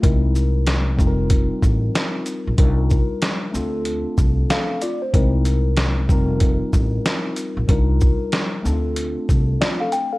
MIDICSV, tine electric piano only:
0, 0, Header, 1, 2, 480
1, 0, Start_track
1, 0, Tempo, 638298
1, 24, Time_signature, 4, 2, 24, 8
1, 7658, End_track
2, 0, Start_track
2, 0, Title_t, "Tine electric piano"
2, 0, Program_c, 0, 4
2, 0, Note_on_c, 0, 57, 54
2, 0, Note_on_c, 0, 65, 62
2, 13, Note_on_c, 0, 56, 69
2, 14, Note_on_c, 0, 60, 62
2, 21, Note_on_c, 0, 63, 65
2, 24, Note_on_c, 0, 64, 66
2, 30, Note_on_c, 0, 70, 75
2, 159, Note_off_c, 0, 65, 0
2, 162, Note_off_c, 0, 57, 0
2, 723, Note_off_c, 0, 60, 0
2, 723, Note_on_c, 0, 55, 75
2, 733, Note_off_c, 0, 63, 0
2, 733, Note_on_c, 0, 60, 64
2, 739, Note_off_c, 0, 56, 0
2, 742, Note_on_c, 0, 63, 64
2, 744, Note_off_c, 0, 64, 0
2, 747, Note_off_c, 0, 70, 0
2, 750, Note_on_c, 0, 65, 67
2, 759, Note_on_c, 0, 69, 64
2, 807, Note_on_c, 0, 70, 79
2, 813, Note_off_c, 0, 69, 0
2, 1910, Note_off_c, 0, 55, 0
2, 1914, Note_off_c, 0, 60, 0
2, 1919, Note_off_c, 0, 63, 0
2, 1923, Note_off_c, 0, 65, 0
2, 1939, Note_on_c, 0, 55, 71
2, 1941, Note_on_c, 0, 62, 66
2, 1945, Note_off_c, 0, 70, 0
2, 1946, Note_on_c, 0, 63, 65
2, 1949, Note_on_c, 0, 65, 67
2, 1954, Note_on_c, 0, 70, 76
2, 2645, Note_on_c, 0, 57, 69
2, 2654, Note_on_c, 0, 60, 64
2, 2655, Note_off_c, 0, 62, 0
2, 2661, Note_off_c, 0, 55, 0
2, 2664, Note_off_c, 0, 65, 0
2, 2664, Note_on_c, 0, 62, 67
2, 2665, Note_off_c, 0, 63, 0
2, 2669, Note_off_c, 0, 70, 0
2, 2673, Note_on_c, 0, 65, 68
2, 2680, Note_on_c, 0, 69, 85
2, 3374, Note_off_c, 0, 65, 0
2, 3378, Note_off_c, 0, 69, 0
2, 3385, Note_on_c, 0, 77, 64
2, 3391, Note_on_c, 0, 69, 53
2, 3613, Note_off_c, 0, 77, 0
2, 3616, Note_off_c, 0, 69, 0
2, 3623, Note_on_c, 0, 74, 77
2, 3629, Note_on_c, 0, 65, 61
2, 3765, Note_off_c, 0, 74, 0
2, 3769, Note_off_c, 0, 65, 0
2, 3774, Note_on_c, 0, 72, 63
2, 3830, Note_off_c, 0, 57, 0
2, 3835, Note_off_c, 0, 60, 0
2, 3840, Note_off_c, 0, 62, 0
2, 3859, Note_on_c, 0, 56, 71
2, 3862, Note_on_c, 0, 60, 68
2, 3868, Note_on_c, 0, 63, 64
2, 3871, Note_on_c, 0, 64, 64
2, 3875, Note_on_c, 0, 70, 77
2, 4002, Note_off_c, 0, 72, 0
2, 4572, Note_off_c, 0, 60, 0
2, 4572, Note_on_c, 0, 55, 75
2, 4581, Note_off_c, 0, 56, 0
2, 4581, Note_off_c, 0, 63, 0
2, 4581, Note_on_c, 0, 60, 63
2, 4587, Note_off_c, 0, 64, 0
2, 4590, Note_off_c, 0, 70, 0
2, 4590, Note_on_c, 0, 63, 65
2, 4598, Note_on_c, 0, 65, 65
2, 4606, Note_on_c, 0, 70, 81
2, 5754, Note_off_c, 0, 55, 0
2, 5759, Note_off_c, 0, 60, 0
2, 5763, Note_off_c, 0, 63, 0
2, 5767, Note_off_c, 0, 65, 0
2, 5772, Note_off_c, 0, 70, 0
2, 5776, Note_on_c, 0, 55, 69
2, 5781, Note_on_c, 0, 62, 64
2, 5786, Note_on_c, 0, 63, 64
2, 5790, Note_on_c, 0, 65, 66
2, 5793, Note_on_c, 0, 70, 79
2, 6484, Note_on_c, 0, 57, 71
2, 6493, Note_on_c, 0, 60, 67
2, 6494, Note_off_c, 0, 62, 0
2, 6500, Note_off_c, 0, 55, 0
2, 6503, Note_off_c, 0, 63, 0
2, 6503, Note_on_c, 0, 62, 65
2, 6507, Note_off_c, 0, 65, 0
2, 6509, Note_off_c, 0, 70, 0
2, 6512, Note_on_c, 0, 63, 57
2, 6521, Note_on_c, 0, 69, 77
2, 6558, Note_on_c, 0, 65, 65
2, 6569, Note_off_c, 0, 63, 0
2, 7219, Note_off_c, 0, 65, 0
2, 7219, Note_off_c, 0, 69, 0
2, 7225, Note_on_c, 0, 74, 65
2, 7228, Note_on_c, 0, 65, 55
2, 7367, Note_off_c, 0, 74, 0
2, 7368, Note_off_c, 0, 65, 0
2, 7372, Note_on_c, 0, 77, 74
2, 7377, Note_on_c, 0, 69, 58
2, 7459, Note_off_c, 0, 77, 0
2, 7461, Note_off_c, 0, 69, 0
2, 7463, Note_on_c, 0, 79, 72
2, 7606, Note_off_c, 0, 79, 0
2, 7615, Note_on_c, 0, 77, 60
2, 7619, Note_on_c, 0, 69, 54
2, 7658, Note_off_c, 0, 57, 0
2, 7658, Note_off_c, 0, 60, 0
2, 7658, Note_off_c, 0, 62, 0
2, 7658, Note_off_c, 0, 69, 0
2, 7658, Note_off_c, 0, 77, 0
2, 7658, End_track
0, 0, End_of_file